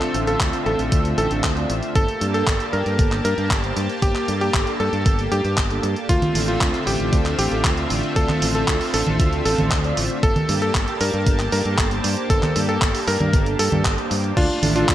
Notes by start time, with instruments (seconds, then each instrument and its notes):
Already playing: analog synth pad D3 A3 C4 F4 E5, analog polysynth C4 D4 F4 D5, electric grand piano A4
0.02 clap, closed hi-hat
0.14 fingered electric bass A1, analog polysynth C4 D4 F4 A4, closed hi-hat
0.27 electric grand piano A4, closed hi-hat
0.40 fingered electric bass D2, kick, clap, closed hi-hat
0.53 analog polysynth C4 D4 F4 A4, closed hi-hat
0.66 fingered electric bass A1, electric grand piano A4, closed hi-hat
0.79 fingered electric bass A1, closed hi-hat
0.92 fingered electric bass D2, analog polysynth C4 D4 F4 A4, kick, closed hi-hat
1.05 closed hi-hat
1.18 fingered electric bass A1, electric grand piano A4, closed hi-hat
1.31 fingered electric bass A1, analog polysynth C4 D4 F4 A4, closed hi-hat
1.44 fingered electric bass D2, kick, clap, closed hi-hat
1.57 analog polysynth C4 D4 F4 D5, closed hi-hat
1.70 fingered electric bass A1, closed hi-hat
1.83 closed hi-hat
1.95 fingered electric bass G1, analog synth pad A#3 G4 A5, electric grand piano A4, kick, closed hi-hat
2.08 closed hi-hat
2.21 fingered electric bass G2, analog polysynth A#3 D4 G4 A4, closed hi-hat
2.34 electric grand piano A4, closed hi-hat
2.47 fingered electric bass G1, kick, clap, closed hi-hat
2.60 analog polysynth A#3 D4 G4 A4, closed hi-hat
2.73 fingered electric bass G2, electric grand piano A#4, closed hi-hat
2.86 fingered electric bass G2, closed hi-hat
2.99 fingered electric bass G1, analog polysynth A#3 D4 G4 A4, kick, closed hi-hat
3.12 clap, closed hi-hat
3.25 fingered electric bass G2, electric grand piano A#4, closed hi-hat
3.38 fingered electric bass G2, analog polysynth A#3 D4 G4 A4, closed hi-hat
3.51 fingered electric bass G1, kick, clap, closed hi-hat
3.64 analog polysynth A#3 D4 G4 C5, closed hi-hat
3.77 fingered electric bass G2, closed hi-hat
3.90 closed hi-hat
4.02 fingered electric bass G1, electric grand piano G4, kick, closed hi-hat
4.15 clap, closed hi-hat
4.28 fingered electric bass G2, analog polysynth A#3 D4 G4 A4, closed hi-hat
4.41 electric grand piano G4, closed hi-hat
4.54 fingered electric bass G1, kick, clap, closed hi-hat
4.67 analog polysynth A#3 D4 G4 A4, closed hi-hat
4.80 fingered electric bass G2, electric grand piano A4, closed hi-hat
4.93 fingered electric bass G2, closed hi-hat
5.06 fingered electric bass G1, analog polysynth A#3 D4 G4 A4, kick, closed hi-hat
5.19 closed hi-hat
5.32 fingered electric bass G2, electric grand piano G4, closed hi-hat
5.45 fingered electric bass G2, closed hi-hat
5.58 fingered electric bass G1, kick, clap, closed hi-hat
5.70 analog polysynth A#3 D4 G4 A4, closed hi-hat
5.83 fingered electric bass G2, closed hi-hat
5.96 closed hi-hat
6.09 fingered electric bass D2, analog synth pad D3 A3 C4 F4 E5, electric grand piano F4, kick, closed hi-hat
6.22 closed hi-hat, high conga
6.35 fingered electric bass A1, analog polysynth C4 D4 F4 A4, open hi-hat
6.48 electric grand piano F4
6.61 fingered electric bass D2, kick, clap, closed hi-hat
6.74 analog polysynth C4 D4 F4 A4, closed hi-hat
6.87 fingered electric bass A1, electric grand piano G4, open hi-hat
7.00 fingered electric bass A1, closed hi-hat
7.13 fingered electric bass D2, analog polysynth C4 D4 F4 A4, kick, closed hi-hat
7.26 clap, closed hi-hat
7.39 fingered electric bass A1, electric grand piano G4, open hi-hat
7.51 fingered electric bass A1, analog polysynth C4 D4 F4 A4, closed hi-hat
7.64 fingered electric bass D2, kick, clap, closed hi-hat
7.77 analog polysynth C4 D4 F4 D5, closed hi-hat
7.90 fingered electric bass A1, open hi-hat
8.03 closed hi-hat
8.16 fingered electric bass D2, electric grand piano A4, kick, closed hi-hat
8.29 clap, closed hi-hat, high conga
8.42 fingered electric bass A1, analog polysynth C4 D4 F4 A4, open hi-hat
8.55 electric grand piano A4, closed hi-hat
8.68 fingered electric bass D2, kick, clap, closed hi-hat
8.81 analog polysynth C4 D4 F4 A4, open hi-hat
8.94 fingered electric bass A1, electric grand piano A4, open hi-hat
9.07 fingered electric bass A1, closed hi-hat, high conga
9.20 fingered electric bass D2, analog polysynth C4 D4 F4 A4, kick, closed hi-hat
9.33 closed hi-hat
9.45 fingered electric bass A1, electric grand piano A4, open hi-hat
9.58 fingered electric bass A1, analog polysynth C4 D4 F4 A4, closed hi-hat, high conga
9.71 fingered electric bass D2, kick, clap, closed hi-hat
9.84 analog polysynth C4 D4 F4 D5, closed hi-hat
9.97 fingered electric bass A1, open hi-hat
10.10 closed hi-hat
10.23 fingered electric bass G1, analog synth pad A#3 G4 A5, electric grand piano A4, kick, closed hi-hat
10.36 closed hi-hat, high conga
10.49 fingered electric bass G2, analog polysynth A#3 D4 G4 A4, open hi-hat
10.62 electric grand piano A4, closed hi-hat
10.75 fingered electric bass G1, kick, clap, closed hi-hat
10.88 analog polysynth A#3 D4 G4 A4, closed hi-hat
11.01 fingered electric bass G2, electric grand piano A#4, open hi-hat
11.14 fingered electric bass G2, closed hi-hat
11.27 fingered electric bass G1, analog polysynth A#3 D4 G4 A4, kick, closed hi-hat
11.39 clap, closed hi-hat
11.52 fingered electric bass G2, electric grand piano A#4, open hi-hat
11.65 fingered electric bass G2, analog polysynth A#3 D4 G4 A4, closed hi-hat
11.78 fingered electric bass G1, kick, clap, closed hi-hat
11.91 analog polysynth A#3 D4 G4 C5, closed hi-hat
12.04 fingered electric bass G2, open hi-hat
12.17 closed hi-hat
12.30 fingered electric bass G1, electric grand piano A4, kick, closed hi-hat
12.43 clap, closed hi-hat, high conga
12.56 fingered electric bass G2, analog polysynth A#3 D4 G4 A4, open hi-hat
12.69 electric grand piano A4, closed hi-hat
12.82 fingered electric bass G1, kick, clap, closed hi-hat
12.95 analog polysynth A#3 D4 G4 A4, open hi-hat
13.08 fingered electric bass G2, electric grand piano A#4, open hi-hat
13.20 fingered electric bass G2, closed hi-hat, high conga
13.33 fingered electric bass G1, analog polysynth A#3 D4 G4 A4, kick, closed hi-hat
13.46 closed hi-hat
13.59 fingered electric bass G2, electric grand piano A4, open hi-hat
13.72 fingered electric bass G2, analog polysynth A#3 D4 G4 A4, closed hi-hat, high conga
13.85 fingered electric bass G1, kick, clap, closed hi-hat
13.98 analog polysynth A#3 D4 G4 C5, closed hi-hat
14.11 fingered electric bass G2, open hi-hat
14.24 closed hi-hat
14.37 fingered electric bass D2, analog synth pad F3 A3 D4, electric grand piano D4 F4, kick, closed hi-hat, crash
14.50 closed hi-hat
14.63 fingered electric bass A1, analog polysynth A3 D4 F4 A4, open hi-hat, high conga
14.76 electric grand piano D4 F4, closed hi-hat
14.89 fingered electric bass D2, kick, clap, closed hi-hat